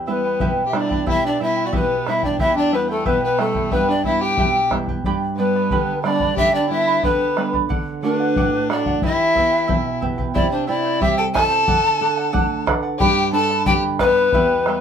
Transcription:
Already playing: E2
0.07 G3 B3 E4 B4 E5 G5
0.25 E4 B4 G5
0.40 B2 E4 G4 B4 E5 G5, bombo low
0.67 G4 E5
0.73 G3 B3 D4 E4 B4 E5 G5, bombo rim
0.77 D5
0.90 E4 B4 G5, bombo low
1.06 B2 E4 G4 B4 E5 G5, bombo low
1.26 D4 D5
1.40 G3 B3 E4 B4 E5 G5
1.44 E4
1.56 E4 B4 G5
1.66 F#4 D5
1.72 B2 B3 E4 G4 B4 E5 G5, bombo low
2.06 G3 B3 E4 B4 E5 G5, bombo rim
2.23 D4 E4 B4 D5 G5, bombo low
2.39 E2 E4 G4 B4 E5 G5, bombo low
2.56 D4 D5
2.72 G3 B3 E4 B4 E5 G5
2.88 A3 E4 A4 B4 G5
3.05 B2 B3 E4 G4 B4 E5 G5, bombo low
3.22 B3 B4
3.38 G3 A3 B3 E4 A4 B4 E5 G5, bombo rim
3.55 E4 B4 G5, bombo low
3.71 G2 B3 E4 G4 B4 E5 G5, bombo low
3.89 D4 D5
4.04 G3 B3 E4 B4 E5 G5, bombo low
4.21 E4 G4 B4 G5
4.37 B2 E4 G4 B4 E5 G5, bombo low
4.71 G3 B3 E4 B4 E5 G5, bombo rim, bombo low
4.88 E4 B4 G5, bombo low
5.04 G2 G4 B4 D5 G5 B5, bombo low
5.36 G3 B3 D4 B4 D5 G5 B5
5.55 B4 D5 B5
5.71 D3 G4 B4 D5 G5 B5, bombo low
6.04 G3 B3 D4 B4 D5 G5 B5, bombo rim
6.20 B4 D5 B5, bombo low
6.36 D3 G4 B4 D5 E5 G5 B5, bombo low
6.53 D4 D5
6.69 G3 B3 D4 E4 B4 D5 E5 G5 B5
6.87 B4 D5 B5
7.03 D3 B3 G4 B4 D5 G5 B5, bombo low
7.37 G3 B3 D4 B4 D5 G5 B5, bombo rim
7.53 B4 D5 B5, bombo low
7.69 D3 A4 D5 F#5, bombo low
8.03 A3 D4 F#4 A4 B4 D5 F#5
8.20 D5 F#5
8.36 A2 A4 D5 F#5, bombo low
8.70 A3 D4 F#4 A4 D5 F#5, bombo rim
8.86 D5 F#5, bombo low
9.02 E3 E4 G4 B4 E5 G5, bombo low
9.35 B3 E4 G4 B4 E5 G5, bombo low
9.52 E4 B4 G5
9.67 B2 E4 G4 B4 E5 G5, bombo low
10.01 B3 E4 G4 B4 E5 G5, bombo low
10.18 E4 B4 G5, bombo low
10.34 C3 E4 G4 C5 D5 E5 G5, bombo low
10.51 D4 C5
10.67 E4 C5 D5 E5 G5
10.85 E4 C5 G5
11.00 G3 E4 G4 C5 E5 G5, bombo low
11.17 A4 G5
11.33 E4 A4 C5 E5 G5 A5, bombo rim, bombo low
11.50 E4 C5 G5
11.67 D3 A4 D5 F#5, bombo low
12.00 A4 D5 F#5
12.17 D5 F#5
12.32 A3 A4 D5 F#5, bombo low
12.66 A4 B4 D5 F#5, bombo rim, bombo low
12.83 D5 F#5
12.98 G2 G4 B4 D5 G5 B5, bombo low
13.33 D4 A4 B4 D5 G5 A5 B5
13.50 B4 D5 B5
13.66 D3 G4 B4 D5 G5 B5, bombo low
13.99 B3 D4 B4 D5 G5 B5, bombo rim, bombo low
14.16 B4 D5 B5
14.32 E2 E4 G4 B4 E5 G5, bombo low
14.66 G3 E4 B4 E5 G5, bombo rim

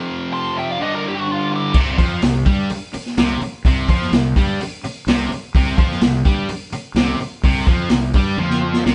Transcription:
Already playing: F2 C3 F3
0.33 A5 C6
0.57 E5 G5
0.70 D5 F5
0.79 G2 D3 G3 B4 D#5
0.92 F4 A#4
1.04 E4
1.08 G4
1.16 D4 F#4
1.28 D4 F4
1.51 E4
1.56 G4
1.74 C2 C3, kick, crash
1.98 F2 F3, kick, open hi-hat
2.22 C2 C3, snare, open hi-hat
2.46 G2 G3, kick, open hi-hat
2.70 muted fingered electric bass stroke, muted distorted electric guitar stroke, open hi-hat
2.94 muted distorted electric guitar stroke, muted fingered electric bass stroke, open hi-hat
3.06 snare
3.17 C2 C3, snare, open hi-hat
3.41 muted fingered electric bass stroke, muted distorted electric guitar stroke, open hi-hat
3.65 C2 C3, kick, open hi-hat
3.88 F2 F3, kick, open hi-hat
4.02 snare
4.11 C2 C3, snare, open hi-hat
4.36 G2 G3, kick, open hi-hat
4.60 muted fingered electric bass stroke, muted distorted electric guitar stroke, open hi-hat
4.84 muted fingered electric bass stroke, muted distorted electric guitar stroke, open hi-hat
5.07 C2 C3, snare, open hi-hat
5.32 muted distorted electric guitar stroke, muted fingered electric bass stroke, open hi-hat
5.55 C2 C3, kick, open hi-hat
5.78 F2 F3, kick, open hi-hat
5.91 snare
6.01 C2 C3, snare, open hi-hat
6.25 G2 G3, kick, open hi-hat
6.49 muted fingered electric bass stroke, muted distorted electric guitar stroke, open hi-hat
6.72 muted fingered electric bass stroke, muted distorted electric guitar stroke, open hi-hat
6.94 C2 C3, snare, open hi-hat
7.19 muted fingered electric bass stroke, muted distorted electric guitar stroke, open hi-hat
7.44 C2 C3, kick, open hi-hat
7.67 F2 F3, kick, open hi-hat
7.89 C2 C3, snare, open hi-hat
8.14 G2 G3, kick, open hi-hat
8.37 F2 F3, high tom
8.50 snare
8.74 snare
8.85 C2 C3, snare

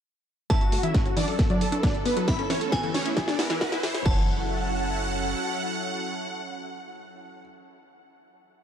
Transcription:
0.50 E3 F#3 C#4 E4 A4 E5 A5, kick, snare, closed hi-hat, riser
0.61 F#4, closed hi-hat
0.72 F#1 A3 F#4, open hi-hat
0.83 E3 E4 E5, closed hi-hat
0.94 F#4, kick, snare, closed hi-hat
1.06 C#4 F#4, closed hi-hat
1.17 F#1 E3 D4 D5, open hi-hat
1.28 A4, open hi-hat
1.39 B3 D4 A4 B4, kick, snare, closed hi-hat
1.50 F#3 D4 D5, closed hi-hat
1.61 F#1 A4, open hi-hat
1.72 D4 A4, closed hi-hat
1.83 F#3 D4 D5, kick, snare, closed hi-hat
1.94 A4, closed hi-hat
2.06 F#1 B3 B4, open hi-hat
2.17 F#3 A4, closed hi-hat
2.28 A3 B3 C#4 E4 E5 B5, kick, snare, closed hi-hat
2.39 C#4 A4, closed hi-hat
2.50 A1 E3 C#4 C#5, snare, open hi-hat
2.61 A4, closed hi-hat
2.72 B3 A4 G#5, kick, snare, closed hi-hat
2.83 E3 A4, closed hi-hat
2.94 A1 C#4 C#5, snare, open hi-hat
3.05 C#4 E4, closed hi-hat
3.17 E3 G#3 E4, kick, snare, closed hi-hat
3.28 D4 D5, snare, closed hi-hat
3.39 B3 E4, snare, open hi-hat
3.50 E3 E4, snare, closed hi-hat
3.61 F#4 F#5, kick, snare, closed hi-hat
3.72 E4, snare, closed hi-hat
3.83 E1 E3 E4, snare, open hi-hat
3.94 E4, snare, closed hi-hat
4.06 F#1 E3 F#3 C#4 E4 A4 F#5 A5, kick, crash

